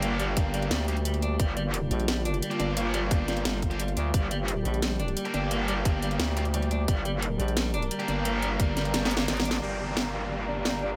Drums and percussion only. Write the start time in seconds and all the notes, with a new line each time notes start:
0.02 closed hi-hat
0.20 closed hi-hat
0.37 kick, closed hi-hat
0.54 closed hi-hat
0.62 closed hi-hat
0.71 snare, closed hi-hat
0.88 closed hi-hat
0.97 closed hi-hat
1.05 closed hi-hat
1.14 closed hi-hat
1.22 closed hi-hat
1.40 kick, closed hi-hat
1.57 closed hi-hat
1.74 closed hi-hat
1.91 closed hi-hat
2.00 closed hi-hat
2.08 snare, closed hi-hat
2.25 closed hi-hat
2.34 closed hi-hat
2.42 closed hi-hat
2.51 closed hi-hat
2.60 closed hi-hat
2.77 closed hi-hat
2.94 closed hi-hat
3.11 kick, closed hi-hat
3.28 snare, closed hi-hat
3.37 closed hi-hat
3.45 snare, closed hi-hat
3.62 kick, closed hi-hat
3.71 closed hi-hat
3.80 closed hi-hat
3.88 closed hi-hat
3.97 closed hi-hat
4.14 kick, closed hi-hat
4.31 closed hi-hat
4.48 closed hi-hat
4.65 closed hi-hat
4.74 closed hi-hat
4.82 snare, closed hi-hat
5.00 closed hi-hat
5.08 closed hi-hat
5.17 closed hi-hat
5.25 closed hi-hat
5.34 closed hi-hat
5.51 closed hi-hat
5.68 closed hi-hat
5.85 kick, closed hi-hat
6.02 closed hi-hat
6.11 closed hi-hat
6.20 snare, closed hi-hat
6.37 closed hi-hat
6.45 closed hi-hat
6.54 closed hi-hat
6.62 closed hi-hat
6.71 closed hi-hat
6.88 kick, closed hi-hat
7.05 closed hi-hat
7.22 closed hi-hat
7.40 closed hi-hat
7.48 closed hi-hat
7.57 snare, closed hi-hat
7.74 closed hi-hat
7.82 closed hi-hat
7.91 closed hi-hat
8.00 closed hi-hat
8.08 closed hi-hat
8.25 closed hi-hat
8.42 closed hi-hat
8.60 kick, closed hi-hat
8.77 snare, closed hi-hat
8.85 closed hi-hat
8.94 snare, closed hi-hat
9.05 snare
9.11 closed hi-hat
9.17 snare, closed hi-hat
9.28 snare, closed hi-hat
9.37 snare, closed hi-hat
9.45 closed hi-hat
9.51 snare
9.97 snare
10.65 snare